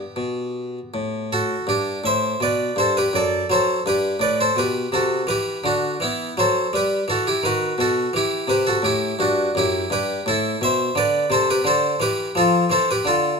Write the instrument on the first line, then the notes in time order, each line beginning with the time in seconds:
harpsichord
Already playing: B3 G4
0.16 B2
0.94 A2
1.33 F#4 A4
1.67 G2 D4 G4
2.04 A2 C5 E5
2.40 B2 B4 D5
2.76 G2 A4 C5
2.97 G4 B4
3.13 F#2 A4 D5
3.50 F#3 A4 C5
3.86 G2 G4 B4
4.19 A2 B4 D5
4.41 A4 C5
4.56 B2 G4 B4
4.92 C3 F#4 A4
5.27 E3 G4 B4
5.64 D3 D4 F#4
6.00 E3 B3 E4
6.37 F#3 A4 C5
6.73 G3 G4 B4
7.08 E3 F#4 A4
7.27 E4 G4
7.43 D#3 F#4 B4
7.78 B2 F#4 A4
8.13 E3 E4 G4
8.47 C3 G4 B4
8.67 F#4 A4
8.82 A2 E4 G4
9.19 G2 D4 F#4
9.55 F#2 E4 G4
9.90 G2 G4 B4
10.26 A2 E4 A4
10.61 B2 C5 E5
10.95 D3 B4 D5
11.30 C3 A4 C5
11.50 G4 B4
11.64 D3 A4 C5
12.00 E3 G4 B4
12.35 F3 F4 A4
12.70 E3 A4 C5
12.91 G4 B4
13.05 D3 F4 A4